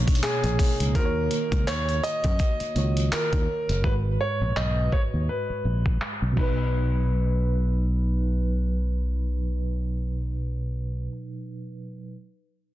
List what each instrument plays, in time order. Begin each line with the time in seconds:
Already playing: fm electric piano B2 A#3 D#4 C#5, ambient pad B2 A#3 D#4
0.08 kick, closed hi-hat
0.15 closed hi-hat
0.23 grand piano G#4, muted fretless electric bass stroke, clap, closed hi-hat
0.44 fretless electric bass A#1, closed hi-hat
0.59 kick, open hi-hat
0.80 fretless electric bass C#2, closed hi-hat
0.93 fretless electric bass D#2, fm electric piano D#3 A#3 F#4, grand piano A#4, kick, closed hi-hat
0.98 fm electric piano C5
1.05 fm electric piano C#5
1.31 closed hi-hat
1.52 fretless electric bass C#2, kick, closed hi-hat
1.67 fretless electric bass D#2, grand piano C#5, clap, closed hi-hat
1.89 closed hi-hat
2.03 grand piano D#5, closed hi-hat
2.24 fretless electric bass F#2, kick, closed hi-hat
2.39 kick, closed hi-hat
2.60 muted fretless electric bass stroke, closed hi-hat
2.75 fretless electric bass C#2, fm electric piano D#3 A#3 F4 C#5, closed hi-hat
2.83 fm electric piano F#4
2.97 closed hi-hat
3.12 grand piano A#4, clap, closed hi-hat
3.33 fretless electric bass D#2, kick, closed hi-hat
3.69 fretless electric bass F#1, closed hi-hat
3.82 fretless electric bass G#1, fm electric piano G#2 G#3 F#4, grand piano B4, kick
3.87 fm electric piano B4
4.21 grand piano C#5
4.41 fretless electric bass A#1
4.56 fretless electric bass B1, grand piano D#5, clap
4.92 grand piano C#5, kick
5.14 fretless electric bass D#2
5.29 grand piano B4
5.50 muted fretless electric bass stroke
5.65 fretless electric bass A#1
5.86 kick
6.02 clap
6.22 fretless electric bass B1
6.33 fm electric piano B2 F#3
6.37 fretless electric bass B1, fm electric piano D#4, grand piano B4, kick, crash
6.43 fm electric piano B4